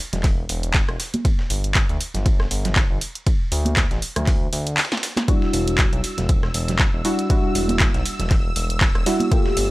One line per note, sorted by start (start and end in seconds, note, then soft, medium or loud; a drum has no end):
0.13 0.44 E1 loud
0.13 snare soft
0.13 closed hi-hat medium
0.13 low conga medium
0.24 kick loud
0.24 clap soft
0.24 closed hi-hat medium
0.24 open hi-hat medium
0.49 0.82 E1 medium
0.49 open hi-hat loud
0.49 ride medium
0.63 closed hi-hat medium
0.74 kick loud
0.74 snare loud
0.74 clap loud
0.74 closed hi-hat soft
0.74 ride medium
0.89 0.97 E1 loud
0.89 cross-stick medium
0.89 ride soft
1.00 snare medium
1.00 open hi-hat loud
1.00 ride medium
1.14 closed hi-hat medium
1.14 high conga medium
1.25 kick loud
1.25 closed hi-hat medium
1.25 ride medium
1.39 snare medium
1.50 1.83 G1 loud
1.50 open hi-hat loud
1.50 ride medium
1.64 closed hi-hat medium
1.75 kick loud
1.75 snare loud
1.75 clap loud
1.75 closed hi-hat medium
1.75 ride medium
1.89 1.97 D2 loud
1.89 closed hi-hat soft
2.00 open hi-hat loud
2.00 ride medium
2.14 2.46 G1 loud
2.14 snare soft
2.14 closed hi-hat medium
2.14 low conga medium
2.26 kick loud
2.26 closed hi-hat medium
2.26 ride medium
2.40 cross-stick medium
2.40 snare medium
2.51 2.84 G1 medium
2.51 open hi-hat loud
2.51 ride medium
2.65 snare medium
2.65 closed hi-hat medium
2.65 low conga loud
2.76 kick loud
2.76 snare loud
2.76 clap loud
2.76 closed hi-hat soft
2.76 ride medium
2.90 2.98 G1 loud
3.01 open hi-hat loud
3.01 ride medium
3.15 closed hi-hat medium
3.27 kick loud
3.27 closed hi-hat medium
3.27 ride medium
3.52 3.85 D2 loud
3.52 open hi-hat loud
3.52 ride medium
3.65 closed hi-hat medium
3.65 high conga medium
3.77 kick loud
3.77 snare loud
3.77 clap loud
3.77 closed hi-hat medium
3.77 ride medium
3.91 3.99 A1 loud
3.91 snare medium
3.91 closed hi-hat soft
4.02 open hi-hat medium
4.16 4.48 D2 loud
4.16 cross-stick medium
4.16 closed hi-hat medium
4.16 low conga medium
4.27 kick loud
4.27 clap soft
4.27 closed hi-hat medium
4.27 open hi-hat medium
4.53 4.78 D2 medium
4.53 open hi-hat loud
4.53 ride medium
4.67 closed hi-hat medium
4.77 snare medium
4.77 clap loud
4.77 open hi-hat medium
4.77 ride medium
4.85 snare medium
4.85 ride medium
4.92 snare medium
4.92 ride medium
4.97 snare medium
4.97 ride medium
5.03 snare loud
5.03 open hi-hat loud
5.03 ride medium
5.17 snare loud
5.17 closed hi-hat medium
5.17 high conga medium
5.28 7.02 G3 medium
5.28 7.02 D4 medium
5.28 7.02 E4 medium
5.28 7.02 F#4 loud
5.28 9.71 E6 medium
5.28 kick loud
5.28 closed hi-hat medium
5.28 ride medium
5.42 snare medium
5.53 5.86 E1 loud
5.53 open hi-hat loud
5.53 ride medium
5.68 closed hi-hat medium
5.78 kick loud
5.78 snare loud
5.78 clap loud
5.78 closed hi-hat medium
5.78 ride medium
5.93 6.01 B1 loud
5.93 closed hi-hat soft
6.04 open hi-hat loud
6.04 ride medium
6.18 6.49 E1 loud
6.18 snare soft
6.18 closed hi-hat medium
6.18 low conga medium
6.29 kick loud
6.29 closed hi-hat medium
6.29 ride medium
6.43 cross-stick medium
6.43 snare medium
6.54 6.87 E1 loud
6.54 open hi-hat loud
6.54 ride medium
6.68 snare medium
6.68 closed hi-hat medium
6.68 low conga medium
6.79 kick loud
6.79 snare loud
6.79 clap loud
6.79 closed hi-hat soft
6.79 ride medium
6.94 7.02 E1 medium
7.04 7.27 G3 medium
7.04 7.27 D4 medium
7.04 7.27 E4 medium
7.04 7.27 F#4 medium
7.04 open hi-hat loud
7.04 ride medium
7.19 closed hi-hat medium
7.29 9.04 G3 medium
7.29 9.04 D4 medium
7.29 9.04 E4 medium
7.29 9.04 F#4 loud
7.29 kick loud
7.29 closed hi-hat medium
7.29 ride medium
7.55 7.88 E1 loud
7.55 open hi-hat loud
7.55 ride medium
7.69 closed hi-hat medium
7.69 high conga medium
7.80 kick loud
7.80 snare loud
7.80 clap loud
7.80 closed hi-hat medium
7.80 ride medium
7.94 8.02 B1 loud
7.94 snare medium
7.94 closed hi-hat soft
8.06 open hi-hat loud
8.06 ride medium
8.19 8.51 E1 loud
8.19 snare soft
8.19 closed hi-hat medium
8.19 low conga medium
8.30 kick loud
8.30 clap soft
8.30 closed hi-hat medium
8.30 open hi-hat medium
8.56 8.89 E1 loud
8.56 open hi-hat loud
8.56 ride medium
8.70 closed hi-hat medium
8.81 kick loud
8.81 snare loud
8.81 clap loud
8.81 closed hi-hat soft
8.81 ride medium
8.95 9.03 E1 loud
8.95 cross-stick medium
8.95 ride soft
9.06 9.29 G3 medium
9.06 9.29 D4 medium
9.06 9.29 E4 medium
9.06 9.29 F#4 medium
9.06 snare medium
9.06 open hi-hat loud
9.06 ride medium
9.20 closed hi-hat medium
9.20 high conga loud
9.31 9.71 A3 medium
9.31 9.71 A#3 medium
9.31 9.71 F4 medium
9.31 9.71 G4 loud
9.31 kick loud
9.31 closed hi-hat medium
9.31 ride medium
9.46 snare medium
9.57 9.71 G1 loud
9.57 open hi-hat loud
9.57 ride medium